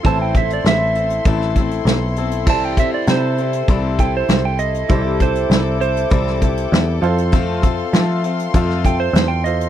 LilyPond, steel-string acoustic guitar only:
\new Staff \with { instrumentName = "Steel-string acoustic guitar" } { \time 4/4 \key c \major \tempo 4 = 99 <a, e a c' e' a'>8 <a c' e' a'>8 <a c' e' a'>8 <a c' e' a'>8 <a, e a c' e' a'>8 <a c' e' a'>4 <a c' e' a'>8 | <c e g c' e' a'>8 <g c' e' a'>8 <g c' e' a'>8 <g c' e' a'>8 <c e g c' e' a'>8 <g c' e' a'>4. | <c e g c' e' a'>8 <g c' e' a'>8 <g c' e' a'>4 <c e g c' e' a'>8 <g c' e' a'>4 <c' f' a'>8 | <f a c' f' a'>8 <c' f' a'>8 <a c' f' a'>8 <c' f' a'>8 <f a c' f' a'>8 <c' f' a'>4. | }